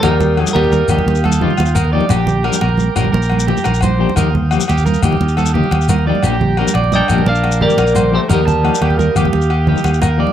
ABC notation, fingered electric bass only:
X:1
M:12/8
L:1/8
Q:3/8=116
K:Eblyd
V:1 name="Fingered electric bass" clef=bass
E,,3 E,,2 E,, E,,3 E,,3 | B,,,3 B,,,2 B,,, B,,,3 B,,,3 | E,,3 E,,2 E,, E,,3 E,,3 | B,,,3 B,,,2 B,,, B,,,3 B,,,3 |
E,,3 E,,2 E,, E,,3 E,,3 |]